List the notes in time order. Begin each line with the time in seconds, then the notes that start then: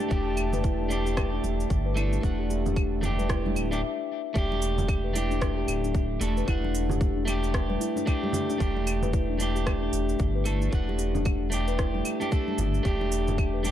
Already playing: G4 D5 E5 A5
0.01 D4
0.08 E1 A3 D4 G4, kick, shaker
0.37 claves, shaker
0.52 B4, muted conga, low conga, shaker
0.64 E4, kick, shaker
0.80 D4
0.89 A3 D4 G4, shaker
1.06 G4, shaker
1.17 kick, cross-stick, claves, shaker
1.33 D4
1.44 E1, muted conga, shaker
1.60 shaker
1.70 G1, kick, shaker
1.86 B4
1.96 A3 D4 E4 A4, claves, shaker
2.13 D4, high conga, shaker
2.21 E1 A3 D4, kick, shaker
2.25 F#5
2.39 G4
2.50 G4, muted conga, shaker
2.66 D4, muted conga, low conga, shaker
2.76 kick, claves, shaker
3.01 A3 D4 G4, low conga, shaker
3.19 B4, high conga, shaker
3.29 E4, kick, cross-stick, shaker
3.45 D4, high conga
3.56 D1, high conga, claves, shaker
3.71 A3 D4 G4 E5, shaker
4.34 E1 A3 D4 G4, kick, shaker
4.51 D4, muted conga
4.62 open hi-hat, shaker
4.78 high conga, low conga, shaker
4.88 kick, claves, shaker
5.04 B4
5.13 A3 D4 E4, open hi-hat, muted conga, shaker
5.18 G4
5.31 D4, shaker
5.42 kick, cross-stick, shaker
5.58 G4
5.68 D1 G4, open hi-hat, claves, shaker
5.84 D4, shaker
5.95 kick, shaker
6.21 E1 A3 D4 A4, open hi-hat, shaker
6.37 B4, shaker
6.46 E1 A3 D4 E4 F#5, kick, claves, shaker
6.64 D4, muted conga
6.75 open hi-hat, shaker
6.90 G4, low conga, shaker
7.01 G4, kick, shaker
7.17 D4
7.25 A3 D4, open hi-hat, muted conga, claves, shaker
7.29 G4
7.44 shaker
7.54 kick, cross-stick, shaker
7.70 B4, high conga
7.80 E4, open hi-hat, shaker
7.96 D4, muted conga, high conga, shaker
8.06 A3 D4 G4, kick, claves, shaker
8.23 G4, high conga
8.33 G4, open hi-hat, low conga, shaker
8.50 D4, muted conga, shaker
8.58 E1 A3 D4 G4, kick, shaker
8.77 muted conga
8.87 open hi-hat, claves, shaker
9.02 B4, high conga, low conga, shaker
9.13 E4, kick, shaker
9.30 D4
9.38 A3 D4 G4, open hi-hat, muted conga, shaker
9.56 G4, shaker
9.67 kick, cross-stick, claves, shaker
9.82 D4
9.93 E1, open hi-hat, shaker
10.09 shaker
10.19 G1, kick, shaker
10.36 B4
10.45 A3 D4 E4 A4, open hi-hat, claves, shaker
10.62 D4, shaker
10.70 E1 A3 D4, kick, shaker
10.75 F#5
10.89 G4, muted conga
10.99 G4, open hi-hat, shaker
11.15 D4, high conga, low conga, shaker
11.25 kick, claves, shaker
11.50 A3 D4 G4, open hi-hat, muted conga, shaker
11.68 B4, shaker
11.78 E4, kick, cross-stick, shaker
11.94 D4, high conga
12.05 open hi-hat, claves, shaker
12.20 A3 D4 G4, muted conga, high conga, shaker
12.31 A3 D4 G4 A4, kick, shaker
12.47 D4, high conga
12.58 G1, open hi-hat, low conga, shaker
12.74 muted conga, shaker
12.83 E1 A3 D4 G4, kick, shaker
13.01 D4, muted conga
13.12 open hi-hat, shaker
13.28 high conga, low conga, shaker
13.38 kick, claves, shaker
13.54 B4
13.63 A3 D4 G4, open hi-hat, muted conga, shaker